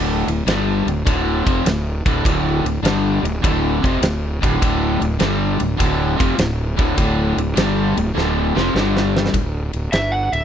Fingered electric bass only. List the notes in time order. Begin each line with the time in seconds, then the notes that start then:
Already playing: D1
0.27 D1
0.47 G1
0.86 D1
1.07 D1
1.46 F1
1.66 D1
2.06 D1
2.25 D1
2.64 D1
2.83 G1
3.23 D1
3.44 D1
3.84 F1
4.01 D1
4.42 D1
4.62 D1
5.01 D1
5.21 G1
5.61 D1
5.80 D1
6.20 F1
6.38 D1
6.79 D1
6.97 D1
7.37 D1
7.57 G1
7.97 D1
8.16 D1
8.56 F1
8.74 G1
9.33 D1
9.74 D1
9.93 G1
10.33 D1